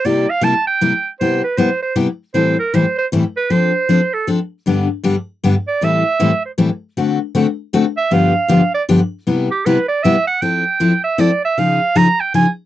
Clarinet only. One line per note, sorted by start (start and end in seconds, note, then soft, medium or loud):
0.05 0.31 D5 medium
0.30 0.45 F5 loud
0.44 0.67 A5 loud
0.67 1.09 G5 loud
1.20 1.41 C5 medium
1.44 1.59 B4 medium
1.57 1.81 C5 medium
1.82 1.95 C5 medium
2.34 2.56 C5 medium
2.59 2.76 A#4 medium
2.74 2.97 C5 medium
2.98 3.06 C5 medium
3.37 3.52 B4 medium
3.50 4.15 C5 medium
4.14 4.27 A4 medium
5.68 5.86 D5 medium
5.84 6.45 E5 loud
6.45 6.52 C5 medium
7.97 8.15 E5 medium
8.13 8.74 F5 loud
8.74 8.83 D5 medium
9.51 9.67 G4 medium
9.65 9.88 B4 medium
9.88 10.05 D5 medium
10.03 10.27 E5 loud
10.27 10.43 F#5 loud
10.42 11.03 G5 loud
11.04 11.22 E5 medium
11.20 11.43 D5 medium
11.45 11.60 E5 loud
11.59 11.99 F5 loud
11.97 12.22 A#5 loud
12.20 12.34 G5 loud
12.35 12.49 G#5 loud